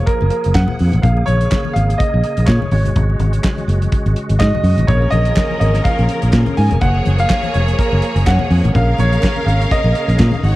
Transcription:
Already playing: tonewheel organ F3 A#3 G#4
0.06 grand piano A#4, kick, closed hi-hat
0.21 fingered electric bass F#1, muted conga
0.30 grand piano A#4, closed hi-hat
0.44 fingered electric bass F#1, closed hi-hat
0.55 fingered electric bass F#2, grand piano F#5, kick, snare, clap
0.68 high conga, low conga
0.79 fingered electric bass F2, open hi-hat
0.92 fingered electric bass A1, closed hi-hat, low conga
1.02 fingered electric bass A#1, tonewheel organ C#3 G#4, grand piano F5, kick, closed hi-hat, low conga
1.17 muted conga
1.26 fingered electric bass A#1, grand piano C#5, closed hi-hat, high conga
1.41 closed hi-hat
1.51 kick, snare, clap, muted conga
1.65 high conga
1.74 fingered electric bass G#1, grand piano F5, closed hi-hat
1.90 closed hi-hat
1.98 grand piano D#5, kick, closed hi-hat
2.14 fingered electric bass A#1
2.24 closed hi-hat
2.37 fingered electric bass A#1, closed hi-hat
2.46 fingered electric bass A#2, grand piano C#5, kick, snare, clap, muted conga
2.62 high conga, low conga
2.71 fingered electric bass G#1, tonewheel organ C#3 G#3 F#4, grand piano C#5, open hi-hat
2.85 fingered electric bass G1, closed hi-hat, low conga
2.96 fingered electric bass G#1, kick, closed hi-hat, muted conga, low conga
3.10 muted conga
3.19 fingered electric bass G#1, closed hi-hat, high conga
3.33 closed hi-hat
3.44 kick, snare, clap
3.58 closed hi-hat, high conga
3.68 fingered electric bass F#1, closed hi-hat
3.82 closed hi-hat, high conga
3.92 kick, closed hi-hat
4.06 fingered electric bass G#1, closed hi-hat, muted conga
4.16 closed hi-hat
4.30 fingered electric bass G#1, closed hi-hat
4.39 fingered electric bass G#2, grand piano D#5, kick, snare, clap, muted conga
4.55 muted conga, high conga, low conga
4.63 fingered electric bass F#2, open hi-hat
4.77 fingered electric bass A1, closed hi-hat, low conga
4.87 fingered electric bass A#1, string section F3 C#4 A#4, tonewheel organ A#3 G#4, grand piano C#5, kick, closed hi-hat, low conga
5.02 muted conga
5.10 fingered electric bass A#1, grand piano D#5, closed hi-hat, high conga
5.25 closed hi-hat
5.36 kick, snare, clap, muted conga
5.51 high conga
5.60 fingered electric bass G#1, grand piano D#5, closed hi-hat
5.74 snare, closed hi-hat
5.84 grand piano F5, kick, closed hi-hat, muted conga
5.99 fingered electric bass A#1, closed hi-hat
6.09 closed hi-hat
6.22 fingered electric bass A#1, closed hi-hat
6.33 fingered electric bass A#2, kick, snare, clap, muted conga
6.46 closed hi-hat, high conga, low conga
6.57 fingered electric bass G#2, grand piano G#5, open hi-hat
6.71 fingered electric bass F1, closed hi-hat, low conga
6.81 fingered electric bass F#1, tonewheel organ F3, string section A#3 G#4 C#5, grand piano F#5, kick, closed hi-hat, low conga
6.95 muted conga
7.05 fingered electric bass F#1, closed hi-hat, high conga
7.18 grand piano F5, closed hi-hat
7.29 kick, snare, clap, muted conga
7.43 closed hi-hat, muted conga, high conga
7.54 fingered electric bass F1, grand piano C#5, closed hi-hat
7.68 closed hi-hat
7.78 grand piano A#4, kick, closed hi-hat, muted conga
7.92 fingered electric bass F#1, muted conga
8.02 closed hi-hat
8.15 fingered electric bass F#1, closed hi-hat
8.26 fingered electric bass F#2, grand piano F#5, kick, snare, clap
8.39 muted conga, high conga, low conga
8.50 fingered electric bass F2, open hi-hat
8.64 fingered electric bass A1, closed hi-hat, low conga
8.74 fingered electric bass A#1, tonewheel organ C#3, string section C#4 A#4 F5, grand piano F5, kick, closed hi-hat, low conga
8.98 fingered electric bass A#1, grand piano C#5, closed hi-hat, high conga
9.13 closed hi-hat
9.23 kick, snare, clap
9.36 muted conga, high conga
9.46 fingered electric bass G#1, grand piano F5, closed hi-hat
9.62 closed hi-hat
9.71 grand piano D#5, kick, closed hi-hat, muted conga
9.84 fingered electric bass A#1, muted conga
9.95 closed hi-hat
10.08 fingered electric bass A#1, closed hi-hat
10.19 fingered electric bass A#2, kick, snare, clap
10.32 closed hi-hat, high conga, low conga
10.43 fingered electric bass G#1, tonewheel organ G#3 F#4, string section D#4 C#5 F#5, open hi-hat

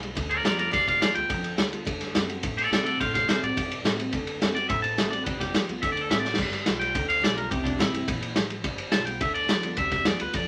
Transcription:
Already playing: upright bass B1
0.00 steel-string acoustic guitar B3 F4, ride
0.15 upright bass D2, steel-string acoustic guitar D3, kick, ride
0.29 clean electric guitar A#4 D5, ride
0.43 upright bass F2, steel-string acoustic guitar G3 B3 F4, clean electric guitar A#4 D5, snare, ride
0.57 steel-string acoustic guitar B3 F4, clean electric guitar A#4 D5, ride
0.71 upright bass D2, steel-string acoustic guitar G3, clean electric guitar D5 F5, kick, ride
0.88 clean electric guitar D5 F5, kick, ride
1.01 upright bass F2, steel-string acoustic guitar G3 B3 F4, clean electric guitar D5 F5, snare, ride
1.15 upright bass D2, steel-string acoustic guitar B3 F4, clean electric guitar G5, ride
1.29 upright bass F2, steel-string acoustic guitar D3, kick, ride
1.44 ride
1.57 upright bass D2, steel-string acoustic guitar G3 B3 F4, snare, ride
1.72 steel-string acoustic guitar B3 F4, ride
1.85 upright bass D2, steel-string acoustic guitar D3, kick, ride
2.01 snare, ride
2.15 upright bass F#2, steel-string acoustic guitar D3 A3 C4 F#4, snare, ride
2.29 steel-string acoustic guitar C4 F#4, ride
2.43 steel-string acoustic guitar A2, upright bass A2, kick, ride
2.57 clean electric guitar A4 D5, ride
2.71 upright bass C3, steel-string acoustic guitar D3 A3 C4 F#4, clean electric guitar A4 D5, snare, ride
2.84 steel-string acoustic guitar C4 F#4, clean electric guitar A4 D5, ride
3.00 upright bass A2, steel-string acoustic guitar D3, clean electric guitar C5 F5, kick, ride
3.14 clean electric guitar C5 F5, kick, snare, ride
3.28 upright bass C3, steel-string acoustic guitar D3 A3 C4 F#4, clean electric guitar C5 F5, snare, ride
3.42 upright bass A2, steel-string acoustic guitar C4 F#4, clean electric guitar D5, ride
3.57 steel-string acoustic guitar A2, upright bass C3, kick, ride
3.71 ride
3.84 upright bass A2, steel-string acoustic guitar D3 A3 C4 F#4, snare, ride
3.99 steel-string acoustic guitar C4 F#4, ride
4.12 upright bass D2, steel-string acoustic guitar D3, kick, ride
4.27 ride
4.41 upright bass F#2, steel-string acoustic guitar D3 A3 C4 F#4, snare, ride
4.55 steel-string acoustic guitar C4 F#4, clean electric guitar D5, ride
4.69 upright bass A2, steel-string acoustic guitar A2, clean electric guitar E5, kick, ride
4.82 clean electric guitar A5, ride
4.97 upright bass A1, steel-string acoustic guitar D3 A3 C4 F#4, snare, ride
5.10 steel-string acoustic guitar F#4, clean electric guitar D5, ride
5.15 steel-string acoustic guitar C4
5.24 upright bass G1, steel-string acoustic guitar G3, clean electric guitar B4, kick, ride
5.40 clean electric guitar G4, kick, snare, ride
5.54 upright bass F2, steel-string acoustic guitar G3 B3 F4, snare, ride
5.68 upright bass C#2, steel-string acoustic guitar B3 F4, ride
5.82 upright bass D2, steel-string acoustic guitar D3, clean electric guitar E5, kick, ride
5.92 clean electric guitar D5
5.97 ride
6.01 clean electric guitar A4
6.10 upright bass A2, steel-string acoustic guitar D3 A3 C4 F#4, clean electric guitar E5, snare, ride
6.20 clean electric guitar D5
6.25 steel-string acoustic guitar C4 F#4, snare
6.34 snare
6.38 upright bass G1, steel-string acoustic guitar G3, kick, crash
6.53 snare, ride
6.66 upright bass B1, steel-string acoustic guitar G3 B3 F4, snare, ride
6.80 clean electric guitar G5, ride
6.95 upright bass D2, steel-string acoustic guitar D3, kick, ride
7.09 clean electric guitar F5, ride
7.21 upright bass B1, steel-string acoustic guitar G3 B3 F4, clean electric guitar D5, snare, ride
7.36 steel-string acoustic guitar B3 F4, clean electric guitar A#4, ride
7.50 upright bass C2, steel-string acoustic guitar C3, clean electric guitar G4, kick, ride
7.64 clean electric guitar D4, kick, ride
7.78 upright bass A#2, steel-string acoustic guitar E3 A#3 C4 E4, clean electric guitar E4, snare, ride
7.93 upright bass G2, steel-string acoustic guitar C4 E4, ride
8.08 upright bass A#2, steel-string acoustic guitar E3, kick, ride
8.22 ride
8.36 upright bass A1, steel-string acoustic guitar F3, snare, ride
8.50 ride
8.64 upright bass G1, steel-string acoustic guitar G3, kick, ride
8.78 ride
8.92 upright bass B1, steel-string acoustic guitar G3 B3 F4, clean electric guitar A5, snare, ride
9.05 steel-string acoustic guitar B3 F4, clean electric guitar G5, ride
9.21 upright bass D2, steel-string acoustic guitar D3, clean electric guitar E5, kick, ride
9.34 clean electric guitar D5, ride
9.48 upright bass F2, steel-string acoustic guitar G3 B3 F4, snare, ride
9.63 steel-string acoustic guitar B3 F4, ride
9.77 upright bass D2, steel-string acoustic guitar G3, clean electric guitar E5, kick, ride
9.91 clean electric guitar E5, kick, snare, ride
10.05 upright bass F2, steel-string acoustic guitar G3 B3 F4, clean electric guitar D5, snare, ride
10.20 upright bass D2, steel-string acoustic guitar B3 F4, clean electric guitar B4, ride
10.33 upright bass F2, steel-string acoustic guitar D3, clean electric guitar D5, kick, ride

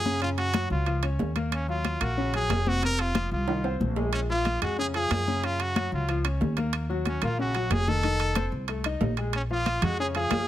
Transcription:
Already playing: upright bass F#2, trumpet G#4
0.05 grand piano C#3 C#4, high conga
0.22 grand piano C#3 C#4, trumpet F4, high conga, high timbale
0.38 trumpet F#4, high conga, high timbale
0.54 grand piano F#3 F#4, high conga, high timbale, low timbale
0.70 upright bass C#2, trumpet F4, high conga
0.86 grand piano F3 F4, high conga, high timbale
1.03 grand piano C#4 C#5, high conga, high timbale
1.19 upright bass D#2, high conga, low timbale
1.36 grand piano A#3 A#4, high conga, high timbale
1.52 trumpet C#4, high conga, high timbale
1.68 grand piano F#3 F4, trumpet F4, high conga
1.85 high conga, high timbale, low timbale
2.01 upright bass A#1, grand piano A#3 A#4, trumpet F#4, high timbale
2.17 grand piano C#3 C#4, high conga
2.34 grand piano F#3 F#4, trumpet G#4, high conga, high timbale
2.49 upright bass F1, high conga, high timbale, low timbale
2.66 grand piano C3 C4, trumpet F#4, high conga
2.83 grand piano C3 C4, trumpet A#4, high conga, high timbale
2.99 trumpet F4, high conga, high timbale
3.15 grand piano F3 F4, high conga, high timbale, low timbale
3.31 upright bass C2, trumpet F4, high conga
3.48 grand piano D#3 D#4, high conga, high timbale
3.64 grand piano C4 C5, high conga, high timbale
3.80 upright bass A#1, high conga
3.96 grand piano G#3 G#4, high conga, low timbale
4.13 trumpet C#4, high conga, high timbale
4.29 grand piano F3 F4, trumpet F4, high conga
4.45 high conga, high timbale, low timbale
4.61 upright bass F2, grand piano G#3 G#4, trumpet F#4, high timbale
4.79 grand piano C#3 C#4, trumpet G#4, high conga
4.94 grand piano F3 F4, trumpet G#4, high conga, high timbale
5.10 upright bass F#2, high conga, high timbale, low timbale
5.28 grand piano C#3 C#4, high conga
5.43 grand piano C#3 C#4, trumpet F4, high conga, high timbale
5.60 trumpet F#4, high conga, high timbale
5.76 grand piano F#3 F#4, high conga, high timbale, low timbale
5.92 upright bass C#2, trumpet F4, high conga
6.09 grand piano F3 F4, high conga, high timbale
6.25 grand piano C#4 C#5, high conga, high timbale
6.41 upright bass D#2, high conga, low timbale
6.57 grand piano A#3 A#4, high conga, high timbale
6.73 high conga, high timbale
6.89 grand piano F#3 F#4, high conga
7.05 trumpet C#4, high conga, high timbale, low timbale
7.22 upright bass A#1, grand piano A#3 A#4, trumpet F4, high timbale
7.39 grand piano C#3 C#4, trumpet F#4, high conga
7.55 grand piano F#3 F#4, high conga, high timbale
7.70 upright bass F1, trumpet G#4, high conga, high timbale, low timbale
7.88 grand piano D#3 D#4, trumpet A4, high conga
8.03 grand piano D#3 D#4, high conga, high timbale
8.20 high conga, high timbale
8.35 grand piano C4 C5, high conga, high timbale, low timbale
8.52 upright bass C2, high conga
8.68 grand piano A3 A4, high conga, high timbale
8.84 grand piano D#4 D#5, high conga, high timbale
9.01 upright bass A#1, high conga, low timbale
9.17 grand piano G#3 G#4, high timbale
9.33 trumpet C#4, high conga, high timbale
9.50 grand piano F3 F4 F5, trumpet F4, high conga
9.66 high conga, high timbale, low timbale
9.82 upright bass F2, grand piano G#3 G#4 G#5, trumpet F#4, low conga, high timbale
9.99 grand piano C#3 C#4 C#5, trumpet G#4, high conga
10.15 grand piano F3 F4 F5, trumpet G#4, high conga, high timbale
10.31 upright bass F#2, high conga, high timbale, low timbale

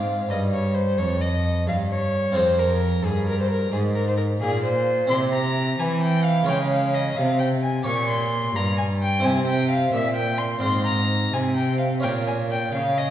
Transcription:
Already playing: harpsichord G#2 G#3 C4 F4 G#4, cello G#2, violin F5
0.29 harpsichord G2, cello G2, violin D#5
0.53 violin C#5
0.74 violin C5
0.98 harpsichord F2, cello F2, violin C#5
1.21 violin D#5
1.67 cello G2, harpsichord G2, violin F5
1.92 violin C#5
2.32 cello F2, harpsichord F2 C4 F4 G#4
2.36 violin C5
2.59 violin A#4
3.03 cello G2, harpsichord G2, violin G#4
3.29 violin A#4
3.40 violin C5
3.50 violin A#4
3.72 cello G#2, harpsichord G#2, violin G#4
3.95 violin A#4
4.08 violin C5
4.17 violin A#4
4.40 cello A#2, harpsichord A#2, violin G#4
4.63 violin C5
5.07 harpsichord C4 E4 G4, violin C6
5.11 cello C3, harpsichord C3
5.34 violin A#5
5.80 cello E3, harpsichord E3, violin G#5
6.03 violin G5
6.24 violin F5
6.43 harpsichord G#3 F4 C#5
6.48 harpsichord C#3, cello C#3, violin G5
6.71 violin F5
6.94 violin D#5
7.17 cello C3, harpsichord C3, violin F5
7.40 violin G5
7.62 violin G#5
7.83 harpsichord A#2 G4 C#5, violin C#6
7.87 cello A#2
8.09 violin C6
8.55 harpsichord G2, cello G2, violin A#5
8.78 violin G#5
9.02 violin G5
9.19 harpsichord C3 C4 E4 C5
9.25 cello C3, violin G#5
9.47 violin G5
9.70 violin F5
9.93 harpsichord A#2, cello A#2, violin E5
10.16 violin G5
10.38 violin C6
10.58 harpsichord C4 F4 C5, violin C6
10.63 harpsichord G#2, cello G#2
10.86 violin A#5
11.33 cello C3, harpsichord C3, violin G#5
11.56 violin G5
11.79 violin F5
12.00 harpsichord C#4 F4 A#4, violin G5
12.04 harpsichord A#2, cello A#2
12.27 violin G#5
12.51 violin G5
12.74 cello C#3, harpsichord C#3, violin F5
12.98 violin D#5

